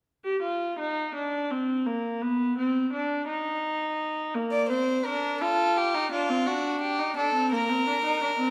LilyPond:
<<
  \new Staff \with { instrumentName = "Violin" } { \time 6/8 \key bes \mixolydian \tempo 4. = 56 r2. | r2. | r16 d''16 c''8 bes'8 a'8 g'8 f'8 | fis'8 g'8 a'8 bes'4. | }
  \new Staff \with { instrumentName = "Viola" } { \time 6/8 \key bes \mixolydian r16 g'16 f'8 ees'8 d'8 c'8 bes8 | b8 c'8 d'8 ees'4. | bes8 c'8 d'8 f'8. ees'16 d'16 c'16 | d'8. ees'16 d'16 c'16 bes16 c'16 d'16 ees'16 d'16 c'16 | }
>>